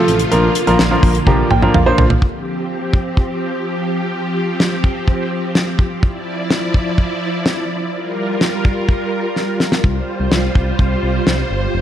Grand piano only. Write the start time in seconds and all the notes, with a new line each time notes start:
Already playing: F3 A3 C4 F4 A4
0.31 F3 A#3 D4 F4 A#4
0.67 F3 A#3 D4 F4 A#4
0.91 F3 A#3 D4 F4 A#4
1.03 C6
1.27 F3 A#3 D4 F4 G4 A#5
1.51 G5
1.63 F3 A#3 D4 F4 A#4
1.74 F5
1.86 F3 A#3 D4 F4 C5